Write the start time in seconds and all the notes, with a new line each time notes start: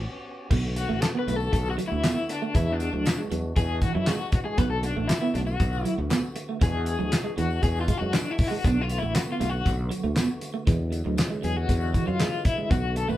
Already playing: B3 C#4 F#4 G4
0.51 B1 D3 A3 B3 F#4, kick, crash, tambourine
0.76 F#4, muted clean electric guitar stroke, closed hi-hat, tambourine
0.89 A1 A3
1.02 A4, snare, clap, closed hi-hat, tambourine
1.15 B3 B4
1.27 B1 A3, closed hi-hat, tambourine
1.36 A4
1.40 tambourine
1.53 B1 A4, muted clean electric guitar stroke, kick, closed hi-hat, tambourine
1.66 tambourine
1.70 F#4
1.78 F#3, closed hi-hat, tambourine
1.88 A3 E4
1.92 D2
2.04 B3, snare, clap, closed hi-hat, tambourine
2.17 tambourine
2.29 D4, muted clean electric guitar stroke, closed hi-hat, tambourine
2.42 A3
2.54 E2 E3 G#3 D4 E4, kick, closed hi-hat, tambourine
2.72 D4
2.80 muted clean electric guitar stroke, closed hi-hat, tambourine
2.93 D2 F#3
3.05 muted clean electric guitar stroke, snare, clap, closed hi-hat, tambourine
3.19 G#3
3.31 E2 F#3, closed hi-hat, tambourine
3.56 E2 G#4, muted clean electric guitar stroke, kick, closed hi-hat, tambourine
3.82 E3 F#4, kick, closed hi-hat, tambourine
3.95 F#2 F#3 E4
4.07 G#3 F#4, snare, clap, closed hi-hat, tambourine
4.21 muted clean electric guitar stroke, tambourine
4.32 F#4, kick, closed hi-hat, tambourine
4.45 G#3 G#4
4.58 B1 D3 A3 B3 B4, kick, closed hi-hat, tambourine
4.70 A4
4.83 D4, muted clean electric guitar stroke, closed hi-hat, tambourine
4.96 A1 A3
5.08 E4, snare, clap, closed hi-hat, tambourine
5.22 B3
5.34 B1 A3 D4, closed hi-hat, tambourine
5.47 F#4, tambourine
5.60 B1, muted clean electric guitar stroke, kick, closed hi-hat, tambourine
5.73 tambourine
5.85 F#3, closed hi-hat, tambourine
5.98 D2 A3
6.10 B3, snare, clap, closed hi-hat, tambourine
6.24 tambourine
6.36 muted clean electric guitar stroke, closed hi-hat, tambourine
6.49 A3
6.61 E2 E3 G#3 D4 F#4 G#4, kick, closed hi-hat, tambourine
6.86 muted clean electric guitar stroke, closed hi-hat, tambourine
6.99 D2 F#3
7.12 muted clean electric guitar stroke, snare, clap, closed hi-hat, tambourine
7.24 G#3
7.37 E2 E3 F#4, closed hi-hat, tambourine
7.50 tambourine
7.63 E2 G#4, muted clean electric guitar stroke, kick, closed hi-hat, tambourine
7.76 tambourine
7.81 F4
7.88 G#3, kick, closed hi-hat, tambourine
7.98 F#2 G#3 F#4
8.13 F#3 D4, snare, clap, closed hi-hat, tambourine
8.26 muted clean electric guitar stroke
8.31 E4
8.38 kick, open hi-hat, tambourine
8.47 G#3 F#4
8.64 B1 D3 A3 B3 D4, kick, closed hi-hat, tambourine
8.81 F4
8.89 muted clean electric guitar stroke, closed hi-hat, tambourine
8.98 E4
9.02 A1 A3, tambourine
9.15 F#4, muted clean electric guitar stroke, snare, clap, closed hi-hat, tambourine
9.28 B3
9.32 F4
9.40 B1 A3, closed hi-hat, tambourine
9.49 F#4
9.65 B1, muted clean electric guitar stroke, kick, closed hi-hat, tambourine
9.91 F#3, closed hi-hat, tambourine
10.04 D2 A3
10.16 B3, snare, clap, closed hi-hat, tambourine
10.41 muted clean electric guitar stroke, closed hi-hat, tambourine
10.54 A3
10.67 E2 D3 E3 F#3 G#3, kick, closed hi-hat, tambourine
10.92 muted clean electric guitar stroke, closed hi-hat, tambourine
11.05 D2 F#3
11.17 muted clean electric guitar stroke, snare, clap, closed hi-hat, tambourine
11.30 G#3
11.42 E2 F#3 G#4, closed hi-hat, tambourine
11.57 F#4
11.68 E2, muted clean electric guitar stroke, kick, closed hi-hat, tambourine
11.81 tambourine
11.94 E3, kick, closed hi-hat, tambourine
12.06 F#2 F#3 F4
12.19 G#3, snare, clap, closed hi-hat, tambourine
12.32 muted clean electric guitar stroke, tambourine
12.45 E4, kick, closed hi-hat, tambourine
12.58 G#3
12.71 B1 A3 B3 F#4, kick, closed hi-hat, tambourine
12.96 A4, muted clean electric guitar stroke, closed hi-hat, tambourine
13.08 A1 A3 B4, tambourine